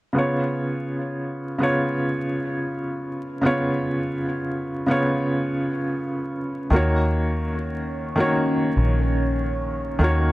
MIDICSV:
0, 0, Header, 1, 4, 480
1, 0, Start_track
1, 0, Tempo, 821918
1, 85, Time_signature, 4, 2, 24, 8
1, 6027, End_track
2, 0, Start_track
2, 0, Title_t, "Ambient pad"
2, 0, Program_c, 0, 92
2, 3923, Note_on_c, 0, 61, 90
2, 3923, Note_on_c, 0, 73, 82
2, 6027, Note_off_c, 0, 61, 0
2, 6027, Note_off_c, 0, 73, 0
2, 6027, End_track
3, 0, Start_track
3, 0, Title_t, "Felt piano"
3, 0, Program_c, 1, 0
3, 75, Note_on_c, 1, 49, 76
3, 86, Note_on_c, 1, 59, 69
3, 94, Note_on_c, 1, 65, 70
3, 107, Note_on_c, 1, 73, 83
3, 209, Control_c, 1, 64, 127
3, 897, Note_off_c, 1, 49, 0
3, 903, Note_off_c, 1, 59, 0
3, 907, Note_off_c, 1, 65, 0
3, 914, Note_off_c, 1, 73, 0
3, 925, Note_on_c, 1, 49, 77
3, 935, Note_on_c, 1, 59, 70
3, 944, Note_on_c, 1, 65, 79
3, 953, Note_on_c, 1, 73, 96
3, 1974, Note_off_c, 1, 49, 0
3, 1979, Note_off_c, 1, 59, 0
3, 1984, Note_off_c, 1, 65, 0
3, 1988, Note_off_c, 1, 73, 0
3, 1994, Note_on_c, 1, 49, 80
3, 2003, Note_on_c, 1, 59, 76
3, 2015, Note_on_c, 1, 65, 72
3, 2022, Note_on_c, 1, 73, 92
3, 2817, Note_off_c, 1, 49, 0
3, 2821, Note_off_c, 1, 59, 0
3, 2827, Note_off_c, 1, 65, 0
3, 2831, Note_off_c, 1, 73, 0
3, 2841, Note_on_c, 1, 49, 85
3, 2851, Note_on_c, 1, 59, 78
3, 2860, Note_on_c, 1, 65, 73
3, 2867, Note_on_c, 1, 73, 91
3, 3892, Note_off_c, 1, 49, 0
3, 3897, Note_off_c, 1, 59, 0
3, 3901, Note_off_c, 1, 65, 0
3, 3905, Note_off_c, 1, 73, 0
3, 3915, Note_on_c, 1, 51, 82
3, 3928, Note_on_c, 1, 58, 80
3, 3933, Control_c, 1, 64, 0
3, 3936, Note_on_c, 1, 66, 76
3, 3948, Note_on_c, 1, 73, 91
3, 4047, Control_c, 1, 64, 127
3, 4737, Note_off_c, 1, 51, 0
3, 4744, Note_off_c, 1, 58, 0
3, 4748, Note_off_c, 1, 66, 0
3, 4754, Note_off_c, 1, 73, 0
3, 4764, Note_on_c, 1, 51, 92
3, 4773, Note_on_c, 1, 58, 81
3, 4782, Note_on_c, 1, 66, 75
3, 4790, Note_on_c, 1, 73, 98
3, 5813, Note_off_c, 1, 51, 0
3, 5818, Note_off_c, 1, 58, 0
3, 5822, Note_off_c, 1, 66, 0
3, 5827, Note_off_c, 1, 73, 0
3, 5833, Note_on_c, 1, 51, 83
3, 5844, Note_on_c, 1, 58, 80
3, 5856, Note_on_c, 1, 66, 77
3, 5863, Note_on_c, 1, 73, 99
3, 6027, Note_off_c, 1, 51, 0
3, 6027, Note_off_c, 1, 58, 0
3, 6027, Note_off_c, 1, 66, 0
3, 6027, Note_off_c, 1, 73, 0
3, 6027, End_track
4, 0, Start_track
4, 0, Title_t, "Fingered electric bass"
4, 0, Program_c, 2, 33
4, 3918, Note_on_c, 2, 39, 83
4, 4883, Note_off_c, 2, 39, 0
4, 4883, Note_on_c, 2, 34, 76
4, 5097, Note_off_c, 2, 34, 0
4, 5121, Note_on_c, 2, 34, 79
4, 5821, Note_off_c, 2, 34, 0
4, 5837, Note_on_c, 2, 39, 93
4, 6027, Note_off_c, 2, 39, 0
4, 6027, End_track
0, 0, End_of_file